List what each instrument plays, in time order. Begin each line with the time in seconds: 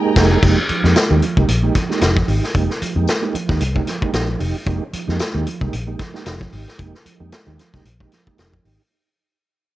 Already playing: tonewheel organ G#3 A#3 D#4 G4 G#4, string section A#4 D#5 G5 A#5
0.16 fingered electric bass F1, kick, snare, crash
0.42 fingered electric bass F1, tonewheel organ G#3 A#3 D#4 G4, kick, crash
0.69 tonewheel organ F3, muted fingered electric bass stroke, closed hi-hat
0.84 fingered electric bass F2, tonewheel organ G#3 A#3 D#4 G4, snare
0.96 snare, closed hi-hat, tambourine
1.10 fingered electric bass D#2, tonewheel organ G#3 A#3 D#4 G4
1.22 tonewheel organ F3, closed hi-hat
1.37 fingered electric bass C2, tonewheel organ G#3 A#3 D#4 G4, kick
1.49 fingered electric bass A#1, closed hi-hat
1.63 tonewheel organ G#3 A#3 D#4 G4
1.75 tonewheel organ F3, kick, snare, closed hi-hat
1.89 tonewheel organ G#3 A#3 D#4 G4, snare
2.01 fingered electric bass F1, tonewheel organ D#4 G4, snare, closed hi-hat, tambourine
2.16 tonewheel organ F3, kick, snare
2.28 fingered electric bass G#1, tonewheel organ D#4 G4, open hi-hat
2.44 snare
2.54 fingered electric bass F1, tonewheel organ G#3 A#3 D#4 G4, kick, closed hi-hat
2.70 snare
2.81 tonewheel organ F3, muted fingered electric bass stroke, closed hi-hat
2.96 fingered electric bass F2, tonewheel organ G#3 A#3 D#4 G4
3.07 snare, closed hi-hat, tambourine
3.22 tonewheel organ G#3 A#3 D#4 G4
3.34 tonewheel organ F3, muted fingered electric bass stroke, closed hi-hat
3.49 fingered electric bass D#2, tonewheel organ G#3 A#3 D#4 G4, kick, snare
3.61 fingered electric bass C2, closed hi-hat
3.75 tonewheel organ G#3 A#3 D#4 G4, kick
3.87 tonewheel organ F3, snare, closed hi-hat
4.01 tonewheel organ G#3 A#3 D#4 G4, kick
4.13 fingered electric bass A#1, tonewheel organ D#4 G4, snare, closed hi-hat, tambourine
4.28 tonewheel organ F3
4.39 fingered electric bass F1, tonewheel organ D#4 G4, open hi-hat
4.66 fingered electric bass F1, tonewheel organ G#3 A#3 D#4 G4, kick, closed hi-hat
4.93 tonewheel organ F3, muted fingered electric bass stroke, closed hi-hat
5.07 fingered electric bass F2, tonewheel organ G#3 A#3 D#4 G4, snare
5.19 snare, closed hi-hat, tambourine
5.34 fingered electric bass D#2, tonewheel organ G#3 A#3 D#4 G4
5.46 tonewheel organ F3, closed hi-hat
5.61 fingered electric bass C2, tonewheel organ G#3 A#3 D#4 G4, kick
5.73 fingered electric bass A#1, closed hi-hat
5.87 tonewheel organ G#3 A#3 D#4 G4
5.99 tonewheel organ F3, kick, snare, closed hi-hat
6.13 tonewheel organ G#3 A#3 D#4 G4, snare
6.25 fingered electric bass F1, tonewheel organ D#4 G4, snare, closed hi-hat, tambourine
6.40 tonewheel organ F3, kick, snare
6.52 fingered electric bass G#1, tonewheel organ D#4 G4, open hi-hat
6.68 snare
6.78 fingered electric bass F1, tonewheel organ G#3 A#3 D#4 G4, kick, closed hi-hat
6.95 snare
7.05 tonewheel organ F3, muted fingered electric bass stroke, closed hi-hat
7.20 fingered electric bass F2, tonewheel organ G#3 A#3 D#4 G4
7.32 snare, closed hi-hat, tambourine
7.46 fingered electric bass D#2, tonewheel organ G#3 A#3 D#4 G4
7.58 tonewheel organ F3, snare, closed hi-hat
7.73 fingered electric bass C2, tonewheel organ G#3 A#3 D#4 G4, kick, snare
7.85 fingered electric bass A#1, closed hi-hat
8.00 tonewheel organ G#3 A#3 D#4 G4, kick
8.12 tonewheel organ F3, snare, closed hi-hat
8.27 tonewheel organ G#3 A#3 D#4 G4, kick
8.38 fingered electric bass F1, tonewheel organ D#4 G4, snare, closed hi-hat, tambourine
8.54 tonewheel organ F3, kick
8.65 fingered electric bass G#1, tonewheel organ D#4 G4, open hi-hat